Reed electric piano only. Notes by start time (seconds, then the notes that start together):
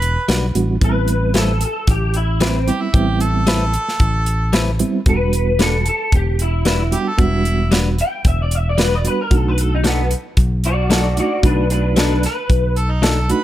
0.55 G3 B3 D4 F#4
0.81 G3 B3 C4 E4
2.67 G3 B3 C4 E4
2.94 G3 B3 C4 E4
4.80 G3 B3 C4 E4
5.06 G3 B3 D4 F#4
6.92 G3 B3 D4 F#4
7.18 G3 B3 D4 F#4
9.04 G3 B3 D4 F#4
9.31 A3 D4 D#4 F#4
11.16 A3 D4 D#4 F#4
11.43 A3 D4 D#4 F#4
13.29 A3 D4 D#4 F#4